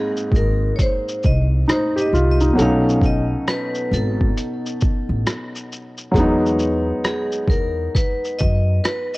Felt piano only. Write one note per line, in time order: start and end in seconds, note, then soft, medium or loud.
0.00 1.61 G#2 medium
0.00 1.62 G#3 medium
0.00 1.63 A#3 medium
0.00 1.64 C4 medium
0.00 1.65 D#4 medium
1.68 1.95 D#4 medium
1.96 2.11 G4 medium
2.14 2.40 F4 medium
2.41 2.60 D#4 medium
2.53 6.09 B2 medium
2.53 6.10 F#3 medium
2.57 6.11 A3 medium
2.57 6.12 C#4 medium
2.57 6.13 D#4 medium
6.12 9.18 F#3 medium
6.12 9.18 G#3 medium
6.17 9.18 B3 medium
6.17 9.18 D#4 medium